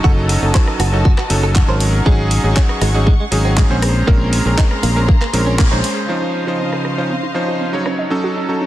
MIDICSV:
0, 0, Header, 1, 7, 480
1, 0, Start_track
1, 0, Key_signature, -5, "major"
1, 0, Tempo, 504202
1, 40, Time_signature, 4, 2, 24, 8
1, 8248, End_track
2, 0, Start_track
2, 0, Title_t, "String section"
2, 0, Program_c, 0, 48
2, 0, Note_on_c, 0, 66, 79
2, 0, Note_on_c, 0, 75, 73
2, 0, Note_on_c, 0, 81, 89
2, 1685, Note_off_c, 0, 75, 0
2, 1701, Note_off_c, 0, 66, 0
2, 1701, Note_off_c, 0, 81, 0
2, 1720, Note_on_c, 0, 68, 79
2, 1720, Note_on_c, 0, 78, 75
2, 1721, Note_on_c, 0, 85, 88
2, 3621, Note_off_c, 0, 78, 0
2, 3621, Note_off_c, 0, 85, 0
2, 3639, Note_on_c, 0, 58, 81
2, 3640, Note_on_c, 0, 82, 91
2, 3640, Note_on_c, 0, 84, 73
2, 5762, Note_off_c, 0, 68, 0
2, 5778, Note_off_c, 0, 58, 0
2, 5778, Note_off_c, 0, 84, 0
2, 5779, Note_off_c, 0, 82, 0
2, 5796, Note_on_c, 0, 72, 64
2, 5796, Note_on_c, 0, 77, 76
2, 5797, Note_on_c, 0, 75, 64
2, 5798, Note_on_c, 0, 49, 68
2, 7461, Note_off_c, 0, 72, 0
2, 7461, Note_off_c, 0, 75, 0
2, 7461, Note_off_c, 0, 77, 0
2, 7462, Note_off_c, 0, 49, 0
2, 7475, Note_on_c, 0, 54, 68
2, 7477, Note_on_c, 0, 69, 75
2, 7478, Note_on_c, 0, 63, 63
2, 8248, Note_off_c, 0, 54, 0
2, 8248, Note_off_c, 0, 63, 0
2, 8248, Note_off_c, 0, 69, 0
2, 8248, End_track
3, 0, Start_track
3, 0, Title_t, "Synth arpeggio sound"
3, 0, Program_c, 1, 84
3, 5798, Note_on_c, 1, 60, 77
3, 5833, Note_off_c, 1, 60, 0
3, 5920, Note_on_c, 1, 63, 92
3, 5954, Note_off_c, 1, 63, 0
3, 6039, Note_on_c, 1, 60, 68
3, 6074, Note_off_c, 1, 60, 0
3, 6160, Note_on_c, 1, 65, 71
3, 6216, Note_off_c, 1, 65, 0
3, 6279, Note_on_c, 1, 60, 76
3, 6314, Note_off_c, 1, 60, 0
3, 6402, Note_on_c, 1, 68, 94
3, 6457, Note_off_c, 1, 68, 0
3, 6518, Note_on_c, 1, 65, 70
3, 6576, Note_off_c, 1, 65, 0
3, 6643, Note_on_c, 1, 72, 95
3, 6698, Note_off_c, 1, 72, 0
3, 6760, Note_on_c, 1, 60, 96
3, 6817, Note_off_c, 1, 60, 0
3, 6884, Note_on_c, 1, 63, 73
3, 6965, Note_off_c, 1, 63, 0
3, 7000, Note_on_c, 1, 60, 68
3, 7034, Note_off_c, 1, 60, 0
3, 7123, Note_on_c, 1, 65, 70
3, 7156, Note_off_c, 1, 65, 0
3, 7241, Note_on_c, 1, 60, 79
3, 7298, Note_off_c, 1, 60, 0
3, 7367, Note_on_c, 1, 68, 92
3, 7419, Note_off_c, 1, 68, 0
3, 7480, Note_on_c, 1, 61, 96
3, 7537, Note_off_c, 1, 61, 0
3, 7603, Note_on_c, 1, 75, 90
3, 7658, Note_off_c, 1, 75, 0
3, 7721, Note_on_c, 1, 61, 75
3, 7755, Note_off_c, 1, 61, 0
3, 7843, Note_on_c, 1, 66, 94
3, 7876, Note_off_c, 1, 66, 0
3, 7961, Note_on_c, 1, 61, 71
3, 7995, Note_off_c, 1, 61, 0
3, 8084, Note_on_c, 1, 69, 74
3, 8138, Note_off_c, 1, 69, 0
3, 8201, Note_on_c, 1, 61, 74
3, 8235, Note_off_c, 1, 61, 0
3, 8248, End_track
4, 0, Start_track
4, 0, Title_t, "Clean electric guitar"
4, 0, Program_c, 2, 27
4, 39, Note_on_c, 2, 66, 103
4, 101, Note_off_c, 2, 66, 0
4, 523, Note_on_c, 2, 72, 81
4, 558, Note_off_c, 2, 72, 0
4, 763, Note_on_c, 2, 66, 106
4, 823, Note_off_c, 2, 66, 0
4, 884, Note_on_c, 2, 66, 74
4, 919, Note_off_c, 2, 66, 0
4, 1000, Note_on_c, 2, 66, 101
4, 1061, Note_off_c, 2, 66, 0
4, 1127, Note_on_c, 2, 66, 77
4, 1160, Note_off_c, 2, 66, 0
4, 1366, Note_on_c, 2, 69, 76
4, 1423, Note_off_c, 2, 69, 0
4, 1483, Note_on_c, 2, 66, 82
4, 1518, Note_off_c, 2, 66, 0
4, 1604, Note_on_c, 2, 72, 79
4, 1662, Note_off_c, 2, 72, 0
4, 1963, Note_on_c, 2, 56, 99
4, 2023, Note_off_c, 2, 56, 0
4, 2441, Note_on_c, 2, 61, 85
4, 2477, Note_off_c, 2, 61, 0
4, 2681, Note_on_c, 2, 56, 102
4, 2742, Note_off_c, 2, 56, 0
4, 2804, Note_on_c, 2, 56, 73
4, 2839, Note_off_c, 2, 56, 0
4, 2919, Note_on_c, 2, 56, 101
4, 2981, Note_off_c, 2, 56, 0
4, 3045, Note_on_c, 2, 56, 80
4, 3079, Note_off_c, 2, 56, 0
4, 3284, Note_on_c, 2, 60, 76
4, 3342, Note_off_c, 2, 60, 0
4, 3404, Note_on_c, 2, 56, 81
4, 3439, Note_off_c, 2, 56, 0
4, 3527, Note_on_c, 2, 61, 81
4, 3584, Note_off_c, 2, 61, 0
4, 3879, Note_on_c, 2, 58, 105
4, 3941, Note_off_c, 2, 58, 0
4, 4360, Note_on_c, 2, 63, 84
4, 4397, Note_off_c, 2, 63, 0
4, 4599, Note_on_c, 2, 58, 105
4, 4661, Note_off_c, 2, 58, 0
4, 4723, Note_on_c, 2, 58, 77
4, 4758, Note_off_c, 2, 58, 0
4, 4839, Note_on_c, 2, 58, 102
4, 4901, Note_off_c, 2, 58, 0
4, 4960, Note_on_c, 2, 58, 75
4, 4997, Note_off_c, 2, 58, 0
4, 5202, Note_on_c, 2, 61, 76
4, 5261, Note_off_c, 2, 61, 0
4, 5319, Note_on_c, 2, 58, 81
4, 5356, Note_off_c, 2, 58, 0
4, 5441, Note_on_c, 2, 63, 80
4, 5500, Note_off_c, 2, 63, 0
4, 8248, End_track
5, 0, Start_track
5, 0, Title_t, "Electric grand piano"
5, 0, Program_c, 3, 2
5, 38, Note_on_c, 3, 54, 93
5, 41, Note_on_c, 3, 61, 82
5, 45, Note_on_c, 3, 63, 87
5, 48, Note_on_c, 3, 69, 103
5, 372, Note_off_c, 3, 54, 0
5, 374, Note_off_c, 3, 61, 0
5, 376, Note_off_c, 3, 63, 0
5, 377, Note_off_c, 3, 69, 0
5, 401, Note_on_c, 3, 54, 74
5, 402, Note_on_c, 3, 61, 69
5, 406, Note_on_c, 3, 63, 71
5, 410, Note_on_c, 3, 69, 84
5, 853, Note_off_c, 3, 54, 0
5, 853, Note_off_c, 3, 61, 0
5, 855, Note_off_c, 3, 63, 0
5, 857, Note_off_c, 3, 69, 0
5, 880, Note_on_c, 3, 54, 75
5, 884, Note_on_c, 3, 61, 68
5, 886, Note_on_c, 3, 63, 70
5, 889, Note_on_c, 3, 69, 84
5, 1004, Note_off_c, 3, 54, 0
5, 1006, Note_off_c, 3, 61, 0
5, 1007, Note_off_c, 3, 63, 0
5, 1009, Note_off_c, 3, 69, 0
5, 1233, Note_on_c, 3, 54, 85
5, 1239, Note_on_c, 3, 61, 76
5, 1241, Note_on_c, 3, 63, 77
5, 1244, Note_on_c, 3, 69, 94
5, 1570, Note_off_c, 3, 54, 0
5, 1573, Note_off_c, 3, 61, 0
5, 1574, Note_off_c, 3, 63, 0
5, 1575, Note_off_c, 3, 69, 0
5, 1598, Note_on_c, 3, 54, 84
5, 1602, Note_on_c, 3, 61, 75
5, 1604, Note_on_c, 3, 63, 74
5, 1608, Note_on_c, 3, 70, 89
5, 1929, Note_off_c, 3, 54, 0
5, 1931, Note_off_c, 3, 61, 0
5, 1932, Note_off_c, 3, 63, 0
5, 1934, Note_off_c, 3, 70, 0
5, 1956, Note_on_c, 3, 54, 94
5, 1960, Note_on_c, 3, 61, 84
5, 1961, Note_on_c, 3, 63, 86
5, 1964, Note_on_c, 3, 68, 106
5, 2291, Note_off_c, 3, 54, 0
5, 2293, Note_off_c, 3, 61, 0
5, 2294, Note_off_c, 3, 63, 0
5, 2296, Note_off_c, 3, 68, 0
5, 2318, Note_on_c, 3, 54, 77
5, 2322, Note_on_c, 3, 61, 69
5, 2326, Note_on_c, 3, 63, 70
5, 2329, Note_on_c, 3, 68, 85
5, 2771, Note_off_c, 3, 54, 0
5, 2773, Note_off_c, 3, 61, 0
5, 2775, Note_off_c, 3, 63, 0
5, 2777, Note_off_c, 3, 68, 0
5, 2802, Note_on_c, 3, 54, 76
5, 2806, Note_on_c, 3, 61, 70
5, 2808, Note_on_c, 3, 63, 71
5, 2810, Note_on_c, 3, 68, 83
5, 2925, Note_off_c, 3, 54, 0
5, 2927, Note_off_c, 3, 61, 0
5, 2929, Note_off_c, 3, 63, 0
5, 2930, Note_off_c, 3, 68, 0
5, 3154, Note_on_c, 3, 54, 85
5, 3158, Note_on_c, 3, 61, 80
5, 3162, Note_on_c, 3, 63, 78
5, 3164, Note_on_c, 3, 68, 93
5, 3490, Note_off_c, 3, 54, 0
5, 3493, Note_off_c, 3, 61, 0
5, 3494, Note_off_c, 3, 63, 0
5, 3495, Note_off_c, 3, 68, 0
5, 3518, Note_on_c, 3, 56, 82
5, 3523, Note_on_c, 3, 60, 78
5, 3524, Note_on_c, 3, 61, 76
5, 3527, Note_on_c, 3, 72, 92
5, 3849, Note_off_c, 3, 56, 0
5, 3852, Note_off_c, 3, 60, 0
5, 3853, Note_off_c, 3, 61, 0
5, 3854, Note_off_c, 3, 72, 0
5, 3876, Note_on_c, 3, 56, 91
5, 3880, Note_on_c, 3, 60, 88
5, 3882, Note_on_c, 3, 61, 87
5, 3886, Note_on_c, 3, 70, 104
5, 4212, Note_off_c, 3, 56, 0
5, 4213, Note_off_c, 3, 60, 0
5, 4214, Note_off_c, 3, 61, 0
5, 4216, Note_off_c, 3, 70, 0
5, 4240, Note_on_c, 3, 56, 79
5, 4242, Note_on_c, 3, 60, 69
5, 4244, Note_on_c, 3, 61, 71
5, 4249, Note_on_c, 3, 70, 88
5, 4692, Note_off_c, 3, 56, 0
5, 4693, Note_off_c, 3, 60, 0
5, 4694, Note_off_c, 3, 61, 0
5, 4697, Note_off_c, 3, 70, 0
5, 4719, Note_on_c, 3, 56, 74
5, 4723, Note_on_c, 3, 60, 68
5, 4725, Note_on_c, 3, 61, 67
5, 4729, Note_on_c, 3, 70, 83
5, 4844, Note_off_c, 3, 56, 0
5, 4846, Note_off_c, 3, 60, 0
5, 4847, Note_off_c, 3, 61, 0
5, 4849, Note_off_c, 3, 70, 0
5, 5077, Note_on_c, 3, 56, 83
5, 5079, Note_on_c, 3, 60, 80
5, 5083, Note_on_c, 3, 61, 80
5, 5085, Note_on_c, 3, 70, 96
5, 5412, Note_off_c, 3, 56, 0
5, 5413, Note_off_c, 3, 60, 0
5, 5415, Note_off_c, 3, 61, 0
5, 5416, Note_off_c, 3, 70, 0
5, 5438, Note_on_c, 3, 56, 83
5, 5443, Note_on_c, 3, 61, 77
5, 5447, Note_on_c, 3, 72, 93
5, 5769, Note_off_c, 3, 56, 0
5, 5772, Note_off_c, 3, 61, 0
5, 5774, Note_off_c, 3, 72, 0
5, 5794, Note_on_c, 3, 53, 79
5, 5797, Note_on_c, 3, 61, 73
5, 5800, Note_on_c, 3, 63, 72
5, 5803, Note_on_c, 3, 72, 86
5, 6130, Note_off_c, 3, 53, 0
5, 6132, Note_off_c, 3, 61, 0
5, 6134, Note_off_c, 3, 63, 0
5, 6135, Note_off_c, 3, 72, 0
5, 6159, Note_on_c, 3, 53, 66
5, 6162, Note_on_c, 3, 61, 59
5, 6167, Note_on_c, 3, 63, 60
5, 6170, Note_on_c, 3, 72, 74
5, 6612, Note_off_c, 3, 53, 0
5, 6613, Note_off_c, 3, 61, 0
5, 6615, Note_off_c, 3, 63, 0
5, 6617, Note_off_c, 3, 72, 0
5, 6638, Note_on_c, 3, 53, 65
5, 6644, Note_on_c, 3, 61, 60
5, 6647, Note_on_c, 3, 63, 59
5, 6648, Note_on_c, 3, 72, 72
5, 6763, Note_off_c, 3, 53, 0
5, 6766, Note_off_c, 3, 61, 0
5, 6768, Note_off_c, 3, 63, 0
5, 6769, Note_off_c, 3, 72, 0
5, 6992, Note_on_c, 3, 53, 73
5, 6996, Note_on_c, 3, 61, 68
5, 6998, Note_on_c, 3, 63, 67
5, 7002, Note_on_c, 3, 72, 82
5, 7329, Note_off_c, 3, 53, 0
5, 7331, Note_off_c, 3, 61, 0
5, 7332, Note_off_c, 3, 63, 0
5, 7335, Note_off_c, 3, 72, 0
5, 7356, Note_on_c, 3, 54, 71
5, 7360, Note_on_c, 3, 61, 64
5, 7361, Note_on_c, 3, 63, 66
5, 7367, Note_on_c, 3, 73, 79
5, 7689, Note_off_c, 3, 54, 0
5, 7690, Note_off_c, 3, 61, 0
5, 7691, Note_off_c, 3, 63, 0
5, 7694, Note_off_c, 3, 73, 0
5, 7714, Note_on_c, 3, 54, 79
5, 7717, Note_on_c, 3, 61, 74
5, 7722, Note_on_c, 3, 63, 76
5, 7724, Note_on_c, 3, 69, 89
5, 8051, Note_off_c, 3, 54, 0
5, 8052, Note_off_c, 3, 61, 0
5, 8054, Note_off_c, 3, 63, 0
5, 8056, Note_off_c, 3, 69, 0
5, 8078, Note_on_c, 3, 54, 65
5, 8081, Note_on_c, 3, 61, 62
5, 8084, Note_on_c, 3, 63, 62
5, 8087, Note_on_c, 3, 69, 75
5, 8248, Note_off_c, 3, 54, 0
5, 8248, Note_off_c, 3, 61, 0
5, 8248, Note_off_c, 3, 63, 0
5, 8248, Note_off_c, 3, 69, 0
5, 8248, End_track
6, 0, Start_track
6, 0, Title_t, "Fingered electric bass"
6, 0, Program_c, 4, 33
6, 40, Note_on_c, 4, 30, 101
6, 345, Note_off_c, 4, 30, 0
6, 401, Note_on_c, 4, 30, 89
6, 485, Note_off_c, 4, 30, 0
6, 755, Note_on_c, 4, 30, 90
6, 1063, Note_off_c, 4, 30, 0
6, 1239, Note_on_c, 4, 30, 81
6, 1545, Note_off_c, 4, 30, 0
6, 1600, Note_on_c, 4, 32, 80
6, 1903, Note_off_c, 4, 32, 0
6, 1961, Note_on_c, 4, 32, 98
6, 2266, Note_off_c, 4, 32, 0
6, 2320, Note_on_c, 4, 32, 90
6, 2404, Note_off_c, 4, 32, 0
6, 2677, Note_on_c, 4, 32, 91
6, 2984, Note_off_c, 4, 32, 0
6, 3157, Note_on_c, 4, 32, 85
6, 3464, Note_off_c, 4, 32, 0
6, 3520, Note_on_c, 4, 34, 78
6, 3824, Note_off_c, 4, 34, 0
6, 3882, Note_on_c, 4, 34, 100
6, 4186, Note_off_c, 4, 34, 0
6, 4240, Note_on_c, 4, 34, 91
6, 4324, Note_off_c, 4, 34, 0
6, 4599, Note_on_c, 4, 34, 90
6, 4905, Note_off_c, 4, 34, 0
6, 5078, Note_on_c, 4, 34, 81
6, 5384, Note_off_c, 4, 34, 0
6, 5441, Note_on_c, 4, 34, 88
6, 5525, Note_off_c, 4, 34, 0
6, 8248, End_track
7, 0, Start_track
7, 0, Title_t, "Drums"
7, 41, Note_on_c, 9, 36, 108
7, 136, Note_off_c, 9, 36, 0
7, 279, Note_on_c, 9, 46, 103
7, 374, Note_off_c, 9, 46, 0
7, 520, Note_on_c, 9, 39, 113
7, 521, Note_on_c, 9, 36, 104
7, 616, Note_off_c, 9, 36, 0
7, 616, Note_off_c, 9, 39, 0
7, 642, Note_on_c, 9, 37, 68
7, 738, Note_off_c, 9, 37, 0
7, 759, Note_on_c, 9, 37, 64
7, 759, Note_on_c, 9, 46, 98
7, 855, Note_off_c, 9, 37, 0
7, 855, Note_off_c, 9, 46, 0
7, 1001, Note_on_c, 9, 36, 117
7, 1096, Note_off_c, 9, 36, 0
7, 1121, Note_on_c, 9, 37, 71
7, 1123, Note_on_c, 9, 39, 37
7, 1216, Note_off_c, 9, 37, 0
7, 1218, Note_off_c, 9, 39, 0
7, 1238, Note_on_c, 9, 46, 101
7, 1333, Note_off_c, 9, 46, 0
7, 1480, Note_on_c, 9, 39, 114
7, 1481, Note_on_c, 9, 36, 99
7, 1575, Note_off_c, 9, 39, 0
7, 1576, Note_off_c, 9, 36, 0
7, 1718, Note_on_c, 9, 46, 101
7, 1813, Note_off_c, 9, 46, 0
7, 1961, Note_on_c, 9, 36, 111
7, 2056, Note_off_c, 9, 36, 0
7, 2199, Note_on_c, 9, 46, 99
7, 2294, Note_off_c, 9, 46, 0
7, 2441, Note_on_c, 9, 36, 101
7, 2441, Note_on_c, 9, 39, 119
7, 2536, Note_off_c, 9, 36, 0
7, 2536, Note_off_c, 9, 39, 0
7, 2563, Note_on_c, 9, 37, 72
7, 2658, Note_off_c, 9, 37, 0
7, 2680, Note_on_c, 9, 37, 68
7, 2680, Note_on_c, 9, 46, 95
7, 2775, Note_off_c, 9, 37, 0
7, 2775, Note_off_c, 9, 46, 0
7, 2921, Note_on_c, 9, 36, 111
7, 3016, Note_off_c, 9, 36, 0
7, 3159, Note_on_c, 9, 46, 97
7, 3254, Note_off_c, 9, 46, 0
7, 3401, Note_on_c, 9, 36, 99
7, 3402, Note_on_c, 9, 39, 120
7, 3496, Note_off_c, 9, 36, 0
7, 3497, Note_off_c, 9, 39, 0
7, 3641, Note_on_c, 9, 37, 90
7, 3641, Note_on_c, 9, 46, 100
7, 3736, Note_off_c, 9, 37, 0
7, 3736, Note_off_c, 9, 46, 0
7, 3882, Note_on_c, 9, 36, 113
7, 3977, Note_off_c, 9, 36, 0
7, 4120, Note_on_c, 9, 46, 103
7, 4215, Note_off_c, 9, 46, 0
7, 4362, Note_on_c, 9, 36, 99
7, 4362, Note_on_c, 9, 39, 120
7, 4457, Note_off_c, 9, 36, 0
7, 4457, Note_off_c, 9, 39, 0
7, 4484, Note_on_c, 9, 37, 68
7, 4579, Note_off_c, 9, 37, 0
7, 4601, Note_on_c, 9, 46, 98
7, 4696, Note_off_c, 9, 46, 0
7, 4842, Note_on_c, 9, 36, 116
7, 4937, Note_off_c, 9, 36, 0
7, 4963, Note_on_c, 9, 37, 70
7, 4965, Note_on_c, 9, 39, 38
7, 5058, Note_off_c, 9, 37, 0
7, 5060, Note_off_c, 9, 39, 0
7, 5080, Note_on_c, 9, 46, 100
7, 5175, Note_off_c, 9, 46, 0
7, 5322, Note_on_c, 9, 36, 98
7, 5322, Note_on_c, 9, 39, 125
7, 5417, Note_off_c, 9, 36, 0
7, 5418, Note_off_c, 9, 39, 0
7, 5559, Note_on_c, 9, 46, 101
7, 5654, Note_off_c, 9, 46, 0
7, 6403, Note_on_c, 9, 37, 57
7, 6498, Note_off_c, 9, 37, 0
7, 6520, Note_on_c, 9, 37, 54
7, 6615, Note_off_c, 9, 37, 0
7, 7480, Note_on_c, 9, 37, 72
7, 7575, Note_off_c, 9, 37, 0
7, 8248, End_track
0, 0, End_of_file